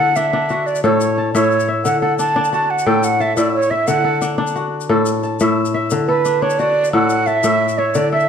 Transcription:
Already playing: D3 E5 F#5
0.00 A4
0.16 D4 E5, shaker
0.33 D4
0.49 F#4, shaker
0.67 D5, shaker
0.75 shaker
0.84 A2 A4 C#5
1.01 shaker
1.18 A5
1.33 A2 C#5 E5, shaker
1.52 shaker
1.60 shaker
1.68 E5
1.85 D3 F#5, shaker
2.01 A4 F#5
2.18 D4 A5, shaker
2.36 D4
2.44 shaker
2.52 F#4 A5, shaker
2.70 F#5
2.79 shaker
2.86 A2 A4 G5
3.03 F#5, shaker
3.20 E5 A5, shaker
3.37 A2 D5 E5, shaker
3.55 C#5
3.62 shaker
3.71 E5
3.87 D3 F#5, shaker
4.04 A4
4.22 D4, shaker
4.38 D4
4.47 shaker
4.56 F#4, shaker
4.81 shaker
4.89 A2 A4
5.06 shaker
5.23 A5, shaker
5.40 A2 E5, shaker
5.65 shaker
5.74 E5
5.90 D3, shaker
6.07 A4 B4
6.25 D4, shaker
6.42 D4 C#5
6.50 shaker
6.59 F#4 D5, shaker
6.84 shaker
6.93 A2 A4 F#5
7.10 shaker
7.27 E5 A5, shaker
7.43 A2 E5, shaker
7.68 shaker
7.78 C#5 E5
7.94 D3 D5, shaker
8.12 A4 E5
8.20 shaker

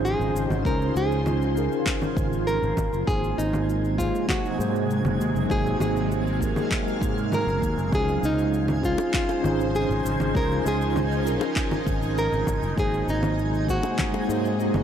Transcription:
Already playing: G#1 C#3 F3 C#4 D#4 F4 G#4 C5 G#5
0.05 G#4, shaker
0.19 G#1, shaker
0.35 G#1, shaker
0.50 G#1 F#4, low conga, shaker
0.65 C#2 C#4 D#4 F4 G#4 A#4 C5, kick, shaker
0.82 shaker
0.96 C#2 G#4, shaker
1.12 shaker
1.26 low conga, shaker
1.42 shaker
1.55 C#4 D#4 F4 G#4 A#4, shaker
1.72 shaker
1.86 kick, clap, shaker
2.01 F#4, low conga, shaker
2.17 G#1, kick, shaker
2.33 shaker
2.47 A#4, shaker
2.62 G#1, shaker
2.77 G#1 C3 F#3 G#3 D#4, kick, low conga, shaker
2.93 F#1, shaker
3.06 G#1 A#3 D#4 F#4 G#4 C5, kick, shaker
3.24 shaker
3.38 G#1 D#4, shaker
3.53 low conga, shaker
3.70 shaker
3.85 shaker
3.98 F#3 A#3 D#4 F4 G#4 C5, kick, shaker
4.15 shaker
4.29 F#4, kick, clap, low conga, shaker
4.45 shaker
4.57 G#2 A#3 D#4 F#4 G#4 C5, shaker
4.76 shaker
4.91 shaker
5.05 F#1, low conga, shaker
5.20 D#2 F5, shaker
5.35 F#1, shaker
5.49 G#1 A#3 D#4 F#4 G#4 C5, kick, shaker
5.66 shaker
5.80 G#1 G#4, low conga, shaker
5.97 shaker
6.12 shaker
6.27 shaker
6.39 A#3 D#4 F#4 G#4 A#4, kick, shaker
6.56 low conga, shaker
6.71 kick, clap, shaker
6.88 shaker
7.02 G#2, kick, shaker
7.18 shaker
7.32 A#4, low conga, shaker
7.47 F#1, shaker
7.62 D#2, kick, shaker
7.77 F#1, shaker
7.91 C#2 C#3 F3 C#4 D#4 F4 G#4 C5, kick, low conga, shaker
7.95 G#4
8.08 shaker
8.23 C#2 D#4, shaker
8.39 shaker
8.54 shaker
8.68 low conga, shaker
8.82 C#4 D#4 F4 G#4 C5, kick, shaker
8.98 high bongo, shaker
9.14 F4, kick, clap, shaker
9.29 high bongo, shaker
9.42 G#1 C#4 D#4 F4 G#4 C5, low conga, shaker
9.61 shaker
9.75 G#4, shaker
9.89 G#1, shaker
10.05 G#1, shaker
10.20 G#1, low conga, shaker
10.34 C#2 C#4 D#4 F4 G#4 A#4 C5, kick, shaker
10.52 shaker
10.66 C#2 G#4, high bongo, shaker
10.82 shaker
10.96 low conga, shaker
11.12 shaker
11.24 C#4 D#4 F4 G#4 A#4, shaker
11.41 high bongo, shaker
11.56 kick, clap, shaker
11.71 low conga, shaker
11.87 G#1, kick, shaker
12.02 shaker
12.18 A#4, shaker
12.32 G#1, shaker
12.47 G#1 C3 F#3 G#3, kick, low conga, shaker
12.62 F#1, shaker
12.76 G#1 A#3 D#4 F#4 G#4 C5, kick, shaker
12.94 shaker
13.08 G#1 D#4, shaker
13.23 low conga, shaker
13.39 shaker
13.54 shaker
13.68 A#3 D#4 F#4 G#4 C5, kick, shaker
13.83 high bongo, shaker
13.99 kick, clap, low conga, shaker
14.14 high bongo, shaker
14.28 G#2 A#3 D#4 F#4 G#4 C5, shaker
14.45 shaker
14.60 shaker
14.74 F#1, low conga, shaker

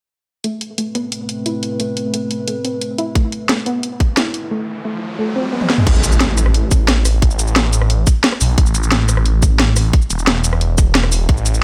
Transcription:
0.44 A3 C4 B4, closed hi-hat
0.61 closed hi-hat
0.78 A3, closed hi-hat
0.95 B3, closed hi-hat
1.12 closed hi-hat
1.29 closed hi-hat
1.46 E4, closed hi-hat
1.63 closed hi-hat
1.80 A3, closed hi-hat
1.97 closed hi-hat
2.14 A3, closed hi-hat
2.31 closed hi-hat
2.48 A3, closed hi-hat
2.65 C4, closed hi-hat
2.81 closed hi-hat
2.98 E4, closed hi-hat
3.15 A3, kick, closed hi-hat, riser
3.32 closed hi-hat
3.49 A3, snare, closed hi-hat
3.66 B3, closed hi-hat
3.83 closed hi-hat
4.00 kick, closed hi-hat
4.17 E4, snare, closed hi-hat
4.34 closed hi-hat
4.51 A3
4.85 A3
5.19 A3
5.36 C4
5.53 B3
5.61 high tom
5.70 B3, snare
5.78 mid tom
5.87 A1, kick, closed hi-hat, crash, impact
5.95 cabasa
6.04 closed hi-hat, cabasa
6.12 cabasa
6.21 snare, closed hi-hat
6.38 cross-stick, closed hi-hat, cabasa
6.46 cross-stick
6.54 closed hi-hat
6.71 kick, closed hi-hat, cabasa
6.88 snare, closed hi-hat
7.05 cross-stick, open hi-hat, cabasa
7.22 A1, kick, closed hi-hat
7.31 cabasa
7.39 closed hi-hat, cabasa
7.48 cabasa
7.56 snare, closed hi-hat
7.73 closed hi-hat, cabasa
7.82 cross-stick
7.90 closed hi-hat
8.07 kick, closed hi-hat, cabasa
8.24 snare, closed hi-hat
8.32 cross-stick
8.41 B1, open hi-hat, cabasa
8.58 A1, kick, closed hi-hat
8.66 cabasa
8.75 closed hi-hat, cabasa
8.83 cabasa
8.92 snare, closed hi-hat
9.09 cross-stick, closed hi-hat, cabasa
9.17 cross-stick
9.26 closed hi-hat
9.43 kick, closed hi-hat, cabasa
9.59 snare, closed hi-hat
9.76 cross-stick, open hi-hat, cabasa
9.93 kick, closed hi-hat
10.02 cabasa
10.10 E1, closed hi-hat, cabasa
10.19 cabasa
10.27 snare, closed hi-hat
10.44 closed hi-hat, cabasa
10.53 cross-stick
10.61 closed hi-hat
10.78 kick, closed hi-hat, cabasa
10.95 snare, closed hi-hat
11.04 cross-stick, closed hi-hat
11.12 open hi-hat, cabasa
11.29 A1, kick, closed hi-hat
11.37 cabasa
11.46 closed hi-hat, cabasa
11.54 cabasa

